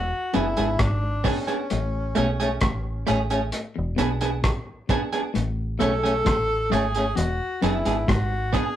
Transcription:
0.00 0.11 E1 loud
0.00 0.37 F#4 loud
0.34 0.57 F#1 medium
0.34 0.48 F#2 medium
0.34 0.44 B3 medium
0.34 0.45 D4 medium
0.34 0.82 E4 loud
0.34 0.45 G#4 medium
0.34 closed hi-hat medium
0.57 0.79 G#1 medium
0.57 0.70 G#2 medium
0.57 0.66 B3 medium
0.57 0.66 D4 medium
0.57 0.65 G#4 medium
0.57 closed hi-hat medium
0.79 1.22 G#1 loud
0.79 1.06 G#2 medium
0.79 1.27 D4 loud
0.79 kick loud
0.79 cross-stick loud
0.79 closed hi-hat loud
1.24 1.35 B3 medium
1.24 3.07 C#4 medium
1.24 1.36 D4 loud
1.24 1.36 G#4 medium
1.24 kick medium
1.24 open hi-hat medium
1.47 1.56 B3 medium
1.47 1.56 D4 medium
1.47 1.56 G#4 medium
1.47 closed hi-hat medium
1.70 2.14 A1 loud
1.70 1.98 A2 medium
1.70 closed hi-hat medium
2.15 2.59 B1 medium
2.15 2.43 B2 medium
2.15 2.26 A3 medium
2.15 2.27 C#4 loud
2.15 2.27 G#4 loud
2.15 closed hi-hat medium
2.40 2.48 A3 medium
2.40 2.48 C#4 medium
2.40 2.47 G#4 medium
2.40 closed hi-hat medium
2.61 3.04 A1 medium
2.61 2.89 A2 medium
2.61 kick loud
2.61 cross-stick loud
2.61 closed hi-hat loud
3.07 3.50 A1 medium
3.07 3.34 A2 medium
3.07 3.17 A3 medium
3.07 3.18 C#4 medium
3.07 3.18 G#4 loud
3.07 closed hi-hat medium
3.30 3.39 A3 medium
3.30 3.38 C#4 medium
3.30 3.38 G#4 medium
3.30 closed hi-hat medium
3.52 closed hi-hat loud
3.76 3.98 E1 loud
3.76 3.89 E2 medium
3.96 4.41 B1 loud
3.96 4.24 B2 medium
3.96 4.09 B3 medium
3.96 4.09 D4 medium
3.96 4.09 G#4 medium
3.96 closed hi-hat medium
4.21 4.30 B3 medium
4.21 4.30 D4 medium
4.21 4.29 G#4 medium
4.21 closed hi-hat medium
4.44 kick loud
4.44 cross-stick loud
4.44 closed hi-hat loud
4.89 5.00 B3 medium
4.89 5.00 D4 loud
4.89 5.01 G#4 loud
4.89 kick medium
4.89 closed hi-hat medium
5.12 5.21 B3 medium
5.12 5.21 D4 medium
5.12 5.20 G#4 medium
5.12 closed hi-hat medium
5.34 5.78 A1 loud
5.34 5.61 A2 medium
5.34 closed hi-hat medium
5.79 6.23 B1 medium
5.79 6.07 B2 medium
5.79 5.91 A3 medium
5.79 5.91 C#4 loud
5.79 5.91 G#4 loud
5.79 6.73 A4 loud
5.79 closed hi-hat medium
6.03 6.12 A3 medium
6.03 6.12 C#4 medium
6.03 6.11 G#4 medium
6.03 closed hi-hat medium
6.25 6.69 A1 medium
6.25 6.52 A2 medium
6.25 kick loud
6.25 cross-stick loud
6.25 closed hi-hat loud
6.70 7.14 G#1 medium
6.70 6.98 G#2 medium
6.70 6.82 A3 medium
6.70 6.82 C#4 medium
6.70 7.18 G#4 loud
6.70 6.83 G#4 loud
6.70 closed hi-hat medium
6.95 7.04 A3 medium
6.95 7.04 C#4 medium
6.95 7.03 G#4 medium
6.95 closed hi-hat medium
7.16 7.39 E1 loud
7.16 7.30 E2 medium
7.16 7.62 F#4 loud
7.16 closed hi-hat loud
7.62 7.85 F#1 medium
7.62 7.76 F#2 medium
7.62 7.73 B3 medium
7.62 7.74 D4 medium
7.62 8.11 E4 medium
7.62 7.74 G#4 medium
7.62 closed hi-hat medium
7.85 8.07 G#1 medium
7.85 7.99 G#2 medium
7.85 7.94 B3 medium
7.85 7.94 D4 medium
7.85 7.94 G#4 medium
7.85 closed hi-hat medium
8.08 8.50 G#1 loud
8.08 8.35 G#2 medium
8.08 8.55 F#4 loud
8.08 kick loud
8.08 cross-stick loud
8.08 closed hi-hat loud
8.53 8.64 B3 medium
8.53 8.64 D4 medium
8.53 8.76 G#4 loud
8.53 8.64 G#4 medium
8.53 kick medium
8.53 closed hi-hat medium

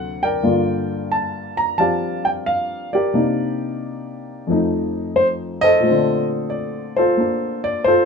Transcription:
0.00 0.43 D2 soft
0.00 0.43 C3 soft
0.00 0.45 F#3 soft
0.00 0.42 A#3 soft
0.00 0.19 A4 medium
0.00 0.19 C5 medium
0.00 0.24 F#5 medium
0.23 1.55 A#4 medium
0.23 1.54 D5 medium
0.23 1.07 G5 medium
0.43 3.13 G2 soft
0.43 3.14 D3 soft
0.43 3.12 A#3 soft
0.43 3.14 F4 medium
1.12 1.59 A5 medium
1.57 1.77 A#5 medium
1.78 3.13 F3 soft
1.78 3.14 C4 soft
1.78 2.93 G4 soft
1.78 2.92 D5 medium
1.78 2.45 F5 medium
1.78 2.26 A5 medium
2.25 2.30 G5 medium
2.46 2.89 F5 medium
2.93 4.92 G4 medium
2.93 4.46 A#4 medium
2.93 4.91 D5 medium
3.14 4.49 C3 soft
3.14 4.49 A#3 soft
3.14 4.49 D4 soft
3.14 4.49 D#4 medium
4.47 5.83 F2 medium
4.47 5.83 F3 soft
4.47 5.82 A3 soft
4.52 5.85 D#4 medium
5.16 5.26 C5 medium
5.61 6.94 A4 medium
5.61 6.94 C5 medium
5.61 6.26 D#5 loud
5.79 8.05 A#2 medium
5.79 8.05 A3 soft
5.87 8.05 D3 medium
5.87 8.05 C4 medium
6.50 6.98 D5 medium
6.96 7.86 F4 medium
6.96 7.86 A4 medium
6.96 7.67 C5 medium
7.17 8.05 A#3 soft
7.17 8.05 D4 soft
7.64 7.84 D5 medium
7.84 8.05 F4 medium
7.84 8.05 A4 medium
7.84 8.05 C5 medium

